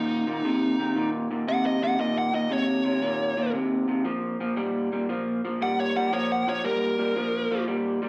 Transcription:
Already playing: clean electric guitar D#2 A#2, lead electric guitar D#4
0.27 clean electric guitar D#2 A#2
0.44 clean electric guitar D#2 C3
0.79 clean electric guitar D#2 C3
0.95 clean electric guitar D#2 A#2
1.31 clean electric guitar D#2 A#2
1.47 clean electric guitar D#2 C3, lead electric guitar F#5
1.66 lead electric guitar D#5
1.82 clean electric guitar D#2 C3, lead electric guitar F#5
1.99 clean electric guitar D#2 A#2, lead electric guitar D#5
2.18 lead electric guitar F#5
2.33 clean electric guitar D#2 A#2, lead electric guitar D#5
2.49 clean electric guitar D#2 C3, lead electric guitar C#5
2.85 clean electric guitar D#2 C3
3.02 clean electric guitar D#2 A#2
3.37 clean electric guitar D#2 A#2
3.53 clean electric guitar D#2 C3
3.88 clean electric guitar D#2 C3
4.05 clean electric guitar A#2 F3
4.40 clean electric guitar A#2 F3
4.57 clean electric guitar A#2 G3
4.92 clean electric guitar A#2 G3
5.09 clean electric guitar A#2 F3
5.45 clean electric guitar A#2 F3
5.61 clean electric guitar A#2 G3, lead electric guitar F#5
5.80 lead electric guitar C#5
5.96 clean electric guitar A#2 G3, lead electric guitar F#5
6.12 clean electric guitar A#2 F3, lead electric guitar C#5
6.32 lead electric guitar F#5
6.47 clean electric guitar A#2 F3, lead electric guitar C#5
6.64 clean electric guitar A#2 G3, lead electric guitar A#4
6.98 clean electric guitar A#2 G3
7.16 clean electric guitar A#2 F3
7.51 clean electric guitar A#2 F3
7.67 clean electric guitar A#2 G3
8.02 clean electric guitar A#2 G3

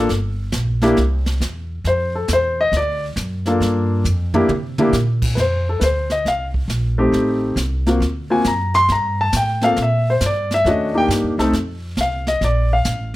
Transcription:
0.09 upright bass G1, brush sweep, snare
0.52 upright bass A#1, snare, hi-hat pedal
0.82 grand piano A#3 D4 E4 G4, snare
0.97 upright bass C2, brush sweep, snare
1.26 snare
1.40 upright bass E2, snare, hi-hat pedal
1.84 upright bass F2, grand piano C5, brush sweep, snare
2.15 grand piano A4
2.28 upright bass E2, snare, hi-hat pedal
2.33 grand piano C5
2.61 grand piano D#5
2.72 upright bass D2, brush sweep, snare
2.77 grand piano D5
3.16 upright bass F#2, snare, hi-hat pedal
3.46 grand piano A#3 D4 F4 A4, snare
3.60 upright bass G2, brush sweep, snare
4.04 upright bass F2, floor tom, hi-hat pedal
4.34 grand piano A#3 D4 E4 G4, floor tom
4.48 upright bass C3, mid tom
4.78 grand piano A#3 D4 E4 G4, mid tom
4.92 upright bass A#2, snare, hi-hat pedal
5.22 kick, crash
5.35 upright bass F2, grand piano B4, brush sweep, snare
5.40 grand piano C5
5.69 grand piano A4
5.80 upright bass D2, grand piano B4 C5, snare, hi-hat pedal
6.10 grand piano D#5, snare
6.25 upright bass C2, grand piano F5, brush sweep, snare
6.54 kick
6.68 upright bass A#1, snare, hi-hat pedal
6.98 grand piano A3 C4 D#4 G4
7.12 upright bass A1, brush sweep, snare
7.56 upright bass C2, snare, hi-hat pedal
7.86 grand piano A#3 C4 F4 F#4, snare
8.00 upright bass D2, brush sweep, snare
8.30 grand piano A#3 C4 F4 F#4 G#5
8.44 upright bass F#2, grand piano A#5, snare, hi-hat pedal
8.74 grand piano C6, snare
8.89 upright bass G2, grand piano A#5, brush sweep, snare
9.21 grand piano A5
9.33 upright bass A2, snare, hi-hat pedal
9.37 grand piano G5
9.61 grand piano A#3 C4 F4 A4 F5, snare
9.76 upright bass A#2, brush sweep, snare
9.82 grand piano E5
10.10 grand piano C5
10.21 upright bass G2, snare, hi-hat pedal
10.26 grand piano D5
10.51 grand piano E5, snare
10.64 upright bass D#2, grand piano A3 C#4 D4 F#4, brush sweep, snare
10.69 grand piano D#5
10.94 grand piano A#3 D4 D#4 G4 G5
11.08 upright bass G2, snare, hi-hat pedal
11.23 upright bass D#2
11.38 upright bass C2, grand piano A3 C4 D#4 A4, snare
11.52 upright bass F2, brush sweep, snare
11.97 upright bass C2, grand piano F5, snare, hi-hat pedal
12.27 grand piano D#5, snare
12.41 upright bass A#1, grand piano D5, brush sweep, snare
12.73 grand piano F5
12.85 upright bass A1, snare, hi-hat pedal

